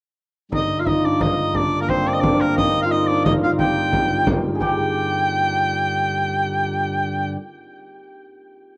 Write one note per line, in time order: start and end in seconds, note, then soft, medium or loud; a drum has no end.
0.51 4.59 G2 medium
0.51 4.60 D3 medium
0.51 0.86 D#4 medium
0.51 0.81 D#5 medium
0.51 frame drum medium
0.79 2.85 F4 medium
0.79 0.89 F5 medium
0.87 1.10 D#4 medium
0.87 1.07 D#5 medium
0.87 frame drum medium
1.04 1.26 D4 medium
1.04 1.23 D5 medium
1.20 1.60 D#4 medium
1.20 1.58 D#5 medium
1.20 frame drum medium
1.37 frame drum soft
1.54 2.06 D4 medium
1.54 1.80 D5 medium
1.54 frame drum medium
1.81 2.41 A#3 medium
1.81 1.91 A#4 medium
1.89 5.89 C4 medium
1.89 2.09 C5 medium
1.89 frame drum medium
2.06 2.21 D4 medium
2.06 2.15 D5 medium
2.14 2.22 D#5 medium
2.20 2.65 D4 medium
2.20 2.43 D5 medium
2.20 frame drum medium
2.41 6.70 A#3 medium
2.41 2.56 A#4 medium
2.41 frame drum soft
2.57 2.92 D#4 medium
2.57 2.81 D#5 medium
2.57 frame drum medium
2.82 3.45 F4 medium
2.82 2.93 F5 medium
2.91 3.17 D#4 medium
2.91 3.09 D#5 medium
3.07 3.35 D4 medium
3.07 3.24 D5 medium
3.25 6.89 D#4 medium
3.25 3.33 D#5 medium
3.25 frame drum medium
3.42 6.81 F4 medium
3.42 3.51 F5 medium
3.42 frame drum soft
3.59 4.61 G4 medium
3.59 4.39 G5 medium
3.59 frame drum medium
3.93 frame drum medium
4.10 frame drum soft
4.27 frame drum medium
4.44 frame drum soft
4.55 4.68 G#4 medium
4.61 7.37 G2 medium
4.61 7.37 D3 soft
4.61 8.04 G4 medium
4.61 7.34 G5 medium
4.61 frame drum medium